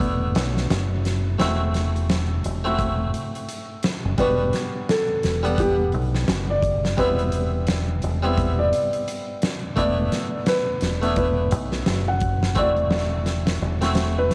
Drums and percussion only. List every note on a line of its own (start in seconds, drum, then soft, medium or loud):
0.00 kick loud
0.00 closed hi-hat medium
0.35 snare medium
0.35 closed hi-hat medium
0.57 snare soft
0.70 snare loud
0.70 closed hi-hat medium
1.05 snare soft
1.05 closed hi-hat medium
1.40 snare medium
1.40 closed hi-hat medium
1.74 snare soft
1.74 closed hi-hat medium
1.96 closed hi-hat soft
2.10 snare loud
2.10 closed hi-hat medium
2.45 closed hi-hat medium
2.79 kick loud
2.79 closed hi-hat medium
3.14 closed hi-hat medium
3.35 closed hi-hat soft
3.49 closed hi-hat medium
3.83 snare loud
3.83 closed hi-hat medium
4.18 kick medium
4.18 closed hi-hat medium
4.53 snare soft
4.53 closed hi-hat medium
4.89 snare loud
4.89 closed hi-hat medium
5.23 snare soft
5.23 closed hi-hat medium
5.44 closed hi-hat soft
5.58 kick loud
5.58 closed hi-hat medium
5.92 closed hi-hat medium
6.15 snare soft
6.28 snare loud
6.28 closed hi-hat medium
6.62 kick medium
6.62 closed hi-hat medium
6.85 snare soft
6.98 kick loud
6.98 closed hi-hat medium
7.19 closed hi-hat soft
7.32 closed hi-hat medium
7.67 snare loud
7.67 closed hi-hat medium
8.02 closed hi-hat medium
8.38 kick loud
8.38 closed hi-hat medium
8.73 closed hi-hat medium
8.93 closed hi-hat soft
9.08 closed hi-hat medium
9.42 snare loud
9.42 closed hi-hat medium
9.77 kick loud
9.77 closed hi-hat medium
10.12 snare soft
10.12 closed hi-hat medium
10.46 snare loud
10.46 closed hi-hat medium
10.81 snare medium
10.81 closed hi-hat medium
11.03 closed hi-hat soft
11.16 kick loud
11.16 closed hi-hat medium
11.51 closed hi-hat medium
11.72 snare soft
11.86 snare loud
11.86 closed hi-hat medium
12.21 kick medium
12.21 closed hi-hat medium
12.43 snare medium
12.55 kick loud
12.55 closed hi-hat medium
12.76 closed hi-hat soft
12.90 snare loud
12.90 closed hi-hat medium
13.26 snare soft
13.26 closed hi-hat medium
13.47 snare medium
13.47 closed hi-hat medium
13.82 snare soft
13.82 closed hi-hat medium
13.95 snare loud
13.95 closed hi-hat medium
14.31 snare soft
14.31 closed hi-hat medium